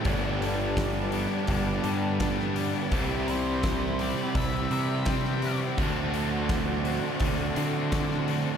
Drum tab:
HH |o-o-o-o-o-o-o-o-|o-o-o-o-o-o-o-o-|o-o-o-o-o-o-o-o-|
SD |----o-------oo--|----o-------oo--|----o-------oo--|
BD |o---o---o---o---|o---o---o---o---|o---o---o---o---|